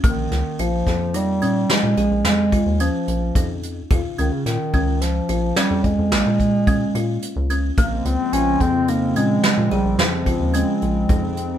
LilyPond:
<<
  \new Staff \with { instrumentName = "Kalimba" } { \time 7/4 \key bes \dorian \tempo 4 = 109 bes4 f'4 ees'8 des'4 aes'4 f'8 des'4 ees'4 | f'8 des'4 des'4 f'8 des'4 bes4 des'8 f'4 des'8 | bes4 f'4 ees'8 des'4 aes'4 f'8 des'4 ees'4 | }
  \new Staff \with { instrumentName = "Bass clarinet" } { \clef bass \time 7/4 \key bes \dorian ees4 f4 g4 aes4 aes4 f4. r8 | r8 ees16 des16 ees4 f4 g8 aes2. r8 | bes8 c'8 des'8 c'8 bes8 aes4 g8 f4 aes4. r8 | }
  \new Staff \with { instrumentName = "Analog synth pad" } { \clef bass \time 7/4 \key bes \dorian r1. r4 | r1. r4 | <des f aes c'>1.~ <des f aes c'>4 | }
  \new Staff \with { instrumentName = "Analog synth bass" } { \clef bass \time 7/4 \key bes \dorian bes,,8 des,16 r16 bes,,8 f,4 bes,8 r16 bes,16 bes,,16 bes,,16 f,8. ees,8 r16 bes,,8 f,4 | f,16 r16 des,16 r16 bes,16 r16 des,4 bes,,8 r16 f,16 f,16 f,16 bes,,16 bes,4~ bes,16 bes,8 r16 des,8. | bes,,8 des,16 r16 bes,,8 f,4 bes,8 r16 bes,16 bes,,16 bes,,16 f,8. ees,8 r16 bes,,8 f,4 | }
  \new DrumStaff \with { instrumentName = "Drums" } \drummode { \time 7/4 <hh bd>8 <hh sn>8 hh8 <hh bd sn>8 hh8 hh8 <hh sn>8 hh8 <hh sn>8 <hh bd>8 hh8 hh8 <hh bd>8 hh8 | <hh bd>8 hh8 <hh sn>8 <hh bd>8 <hh sn>8 hh8 <hh sn>8 <hh bd>8 <hh sn>8 <hh bd>8 <hh bd>8 hh8 hh8 hh8 | <hh bd>8 hh8 hh8 <hh bd>8 hh8 hh8 <hh sn>8 hh8 <hh sn>8 <hh bd>8 hh8 hh8 <hh bd>8 hh8 | }
>>